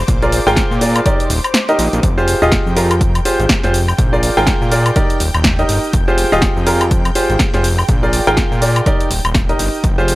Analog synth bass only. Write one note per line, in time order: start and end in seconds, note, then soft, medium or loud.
0.08 0.40 A#1 loud
0.47 0.62 G#1 medium
0.71 1.01 A#2 medium
1.30 1.40 D#1 medium
1.79 1.89 A#1 medium
1.93 2.00 A#1 medium
2.03 2.35 F1 medium
2.42 2.58 D#1 medium
2.66 3.20 F2 medium
3.40 3.47 G#1 loud
3.64 3.94 F1 loud
3.98 4.30 A#1 medium
4.37 4.53 G#1 medium
4.62 4.91 A#2 medium
5.20 5.30 D#1 medium
5.35 5.64 D#1 loud
5.69 5.79 G1 medium
5.93 6.25 F1 loud
6.32 6.48 D#1 medium
6.57 7.11 F2 medium
7.30 7.37 G#1 loud
7.54 7.84 F1 loud
7.89 8.20 A#1 loud
8.27 8.43 G#1 medium
8.52 8.81 A#2 medium
9.11 9.21 D#1 medium
9.25 9.54 D#1 medium
9.59 9.69 G1 medium
9.84 10.15 F1 loud